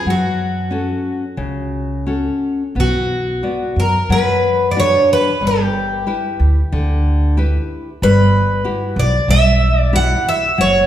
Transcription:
0.05 0.91 F#2 medium
0.05 0.69 F#3 medium
0.10 2.05 F#4 medium
0.71 1.24 C#4 soft
0.71 1.24 F#4 soft
0.71 1.24 A4 soft
1.37 2.27 C#2 medium
1.37 2.04 C#3 medium
2.06 2.62 C#4 soft
2.06 2.62 F#4 soft
2.06 2.62 A4 soft
2.75 3.41 B1 medium
2.75 3.41 B3 medium
2.80 3.81 F#4 medium
3.43 3.97 B3 soft
3.43 3.96 F#4 soft
3.43 3.97 D5 soft
3.76 3.98 F#2 medium
3.76 4.12 A#4 medium
4.09 4.95 F#2 medium
4.09 4.74 F#3 medium
4.09 4.71 B4 medium
4.71 4.77 D5 medium
4.76 5.29 D4 soft
4.76 5.29 F#4 soft
4.76 5.29 B4 soft
4.76 5.09 C#5 loud
5.13 5.45 B4 medium
5.41 6.05 G1 medium
5.41 6.05 G3 medium
5.47 7.68 G4 medium
6.07 6.59 E4 soft
6.07 6.59 G4 soft
6.07 6.60 B4 medium
6.40 6.61 D2 medium
6.72 7.57 D2 medium
6.72 7.36 D3 medium
7.37 7.89 E4 soft
7.37 7.89 G4 soft
7.37 7.89 B4 medium
8.02 8.64 G1 medium
8.02 8.64 G3 medium
8.02 9.00 B4 medium
8.64 9.15 E4 medium
8.64 9.15 F#4 soft
8.64 9.16 G4 medium
8.96 9.17 B1 medium
8.96 9.30 D5 medium
9.28 10.13 B1 medium
9.28 9.91 G3 medium
9.28 9.79 E5 loud
9.79 9.95 D5 loud
9.93 10.46 E4 medium
9.93 10.46 F#4 soft
9.93 10.46 G4 medium
9.93 10.28 F#5 loud
10.29 10.61 E5 medium
10.58 10.87 F#1 medium
10.58 10.87 F#3 medium
10.58 10.87 C#5 medium

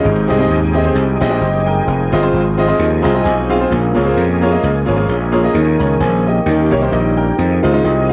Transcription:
0.00 0.71 G#2 medium
0.00 6.42 F3 medium
0.00 3.67 D#4 medium
0.00 1.85 G4 medium
0.00 6.41 G#4 medium
0.04 0.26 G#1 medium
0.04 6.42 G#3 medium
0.04 3.67 C4 medium
0.04 1.86 C4 medium
0.04 3.67 D#4 medium
0.28 0.47 C2 medium
0.28 0.36 C4 medium
0.28 0.37 G4 medium
0.28 0.37 G#4 medium
0.28 0.37 D#5 medium
0.39 0.56 C4 medium
0.39 0.56 G4 medium
0.39 0.56 G#4 medium
0.39 0.56 D#5 medium
0.50 0.89 D#2 medium
0.74 0.82 C4 medium
0.74 0.83 G4 medium
0.74 0.83 G#4 medium
0.74 0.83 D#5 medium
0.84 1.01 C4 medium
0.84 1.01 G4 medium
0.84 1.02 G#4 medium
0.84 1.02 C5 medium
0.95 1.17 C2 medium
1.21 1.39 A#1 medium
1.21 1.28 C4 medium
1.21 1.28 G4 medium
1.21 1.29 G#4 medium
1.21 1.29 D#5 medium
1.29 1.47 C4 medium
1.29 1.39 G4 medium
1.29 1.41 G#4 medium
1.29 1.39 D#5 medium
1.41 1.80 F#1 medium
1.41 1.65 G4 medium
1.41 1.65 D#5 medium
1.67 2.11 A#4 medium
1.67 2.10 G5 medium
1.87 2.09 F1 medium
1.87 5.50 F3 medium
1.87 3.69 C4 medium
1.87 5.51 F4 medium
2.12 2.30 G1 medium
2.12 2.20 C4 medium
2.12 2.20 F4 medium
2.12 2.21 G#4 medium
2.12 2.21 D#5 medium
2.22 2.39 C4 medium
2.22 2.39 F4 medium
2.22 2.39 G#4 medium
2.22 2.39 C5 medium
2.34 2.72 G#1 medium
2.57 2.66 C4 medium
2.57 2.66 F4 medium
2.57 2.66 G#4 medium
2.57 2.66 D#5 medium
2.67 2.84 C4 medium
2.67 2.84 F4 medium
2.67 2.84 G#4 medium
2.67 2.85 D#5 medium
2.79 3.01 D#2 loud
3.02 3.22 C2 medium
3.02 3.11 C4 medium
3.02 3.11 F4 medium
3.02 3.11 G#4 medium
3.02 3.12 D#5 medium
3.02 3.23 A#5 medium
3.14 3.31 C4 medium
3.14 3.31 F4 medium
3.14 3.31 G#4 medium
3.14 3.31 D#5 medium
3.24 3.64 B1 medium
3.24 3.48 G#5 medium
3.50 3.57 C4 medium
3.50 3.58 F4 medium
3.50 3.58 G#4 medium
3.50 3.58 F5 medium
3.59 3.70 C4 medium
3.59 3.70 F4 medium
3.59 3.71 G#4 medium
3.59 3.71 C5 medium
3.70 3.93 A#1 medium
3.70 4.38 A#2 medium
3.70 7.34 A#3 medium
3.70 5.52 A#3 medium
3.70 7.34 C#4 medium
3.95 4.14 C#2 medium
3.95 4.03 A#3 medium
3.95 4.03 F4 medium
3.95 4.03 G#4 medium
3.95 4.04 C#5 medium
4.05 4.22 A#3 medium
4.05 4.22 F4 medium
4.05 4.22 G#4 medium
4.05 4.23 C5 medium
4.17 4.56 F2 medium
4.41 4.49 A#3 medium
4.41 4.50 F4 medium
4.41 4.49 G#4 medium
4.41 4.50 C#5 medium
4.51 4.68 A#3 medium
4.51 4.68 F4 medium
4.51 4.68 G#4 medium
4.51 4.68 D#5 medium
4.63 4.84 C#2 medium
4.86 5.05 G#1 medium
4.86 4.94 A#3 medium
4.86 4.95 F4 medium
4.86 4.95 G#4 medium
4.86 4.95 C#5 medium
4.96 5.13 A#3 medium
4.96 5.13 F4 medium
4.96 5.14 G#4 medium
4.96 5.14 C#5 medium
5.09 5.47 A#1 medium
5.32 5.40 A#3 medium
5.32 5.40 F4 medium
5.32 5.41 G#4 medium
5.32 5.41 C#5 medium
5.43 5.54 A#3 medium
5.43 5.54 F4 medium
5.43 5.54 G#4 medium
5.43 5.54 D#5 medium
5.53 5.76 D#2 medium
5.53 6.21 D#3 medium
5.53 7.36 D#3 medium
5.53 7.36 A#3 medium
5.53 8.13 D#4 medium
5.79 5.97 C#2 medium
5.79 5.99 C#5 soft
5.79 5.99 A#5 medium
6.00 6.39 A#1 medium
6.00 6.25 C5 medium
6.00 6.24 G#5 medium
6.27 6.70 G4 medium
6.27 6.70 D#5 medium
6.45 6.73 D#2 loud
6.45 7.13 D#3 medium
6.45 7.36 G3 medium
6.45 7.37 G3 soft
6.45 7.37 G4 medium
6.70 6.89 C2 medium
6.70 6.78 A#3 medium
6.70 6.79 D#4 medium
6.70 6.79 G4 medium
6.70 6.79 C#5 medium
6.81 6.97 A#3 medium
6.81 6.97 D#4 medium
6.81 6.91 G4 medium
6.81 6.92 C5 medium
6.92 7.31 A#1 medium
6.92 7.17 G4 soft
6.92 7.16 D#5 medium
7.17 7.61 A#4 medium
7.17 7.61 G5 medium
7.38 7.60 F2 medium
7.38 8.13 D#3 medium
7.38 8.13 F3 medium
7.38 8.13 C4 medium
7.38 8.13 D#4 medium
7.38 8.13 F4 medium
7.38 8.13 G#4 medium
7.62 7.81 C#2 medium
7.62 7.70 G#3 medium
7.62 7.70 D#4 medium
7.62 7.70 F4 medium
7.62 7.71 C5 medium
7.72 7.89 G#3 medium
7.72 7.89 D#4 medium
7.72 7.89 F4 medium
7.72 7.82 D#5 medium
7.84 8.13 C2 medium
7.84 8.08 G4 medium
7.84 8.08 D#5 medium
8.09 8.13 F5 medium

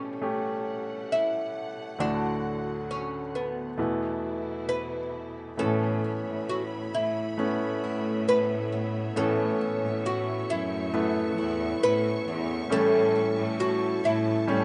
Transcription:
0.00 1.94 A2 soft
0.00 1.94 B2 medium
0.00 1.94 E3 soft
0.00 1.94 G3 medium
0.00 0.12 A3 soft
0.00 5.55 A3 soft
0.00 0.13 C#4 soft
0.00 1.07 C#4 medium
0.00 0.18 E4 medium
0.00 0.13 G4 medium
0.21 1.89 A3 medium
0.21 1.89 C#4 soft
0.21 1.90 G4 medium
0.21 3.74 F#5 medium
1.12 2.00 E4 medium
1.98 3.74 D2 soft
1.98 3.74 A2 soft
1.98 3.76 D3 medium
1.98 3.69 D3 soft
1.98 3.76 F#3 medium
1.98 3.69 A3 medium
1.98 2.90 D4 medium
1.98 3.70 F#4 medium
2.91 3.35 C#4 medium
3.35 4.65 B3 soft
3.77 5.55 E2 soft
3.77 5.57 B2 medium
3.77 5.55 B2 soft
3.77 5.57 E3 medium
3.77 5.50 A3 medium
3.77 5.50 B3 soft
3.77 5.57 E4 medium
3.77 5.50 E4 medium
4.69 5.59 B4 medium
5.57 6.89 A2 soft
5.57 9.15 A2 medium
5.57 6.22 A2 medium
5.57 6.89 E3 soft
5.57 7.29 A3 medium
5.57 14.64 A3 medium
5.57 7.29 B3 soft
5.57 7.29 C#4 medium
5.57 6.49 A4 medium
5.57 12.67 C#5 medium
5.57 14.64 E5 soft
5.57 9.13 B5 medium
6.04 6.93 C#4 soft
6.26 6.90 A2 medium
6.49 7.83 E4 soft
6.49 6.61 F#4 medium
6.94 7.35 A2 medium
6.94 8.27 C#4 soft
6.94 8.32 E4 medium
7.37 9.12 A2 medium
7.37 9.07 A3 medium
7.37 9.08 B3 medium
7.37 8.71 B3 soft
7.37 9.08 C#4 medium
7.84 10.05 E4 medium
8.28 9.61 C#4 soft
8.28 9.17 B4 medium
8.72 10.92 B3 soft
9.16 12.71 A2 medium
9.16 10.46 A2 medium
9.16 9.79 A2 medium
9.16 10.46 E3 soft
9.16 10.85 A3 medium
9.16 10.85 B3 medium
9.16 10.85 C#4 medium
9.16 10.06 A4 medium
9.16 14.64 C#6 medium
9.61 10.49 C#4 soft
9.84 10.46 A2 medium
10.05 11.38 E4 medium
10.05 10.51 F#4 medium
10.50 11.38 F#2 medium
10.50 11.82 C#4 medium
10.50 11.87 E4 medium
10.93 12.62 A3 medium
10.93 12.27 B3 soft
10.93 12.62 B3 medium
10.93 12.62 E4 medium
11.38 11.79 E2 medium
11.38 13.59 E4 medium
11.82 12.23 A2 medium
11.82 13.15 C#4 medium
11.82 12.67 B4 medium
12.27 12.68 E2 medium
12.27 12.80 B3 soft
12.70 13.99 A2 medium
12.70 13.33 A2 loud
12.70 14.64 A2 medium
12.70 13.99 E3 medium
12.70 14.38 G3 medium
12.70 14.38 A3 medium
12.70 14.38 C#4 medium
12.70 13.60 A4 medium
12.70 14.64 A5 medium
13.15 14.02 C#4 medium
13.36 13.99 A2 medium
13.59 14.64 E4 medium
13.59 14.01 F#4 medium
14.03 14.44 A2 medium
14.03 14.64 C#4 medium
14.03 14.64 E4 medium
14.47 14.64 A2 medium
14.47 14.64 G3 medium
14.47 14.64 A3 medium
14.47 14.64 C#4 medium

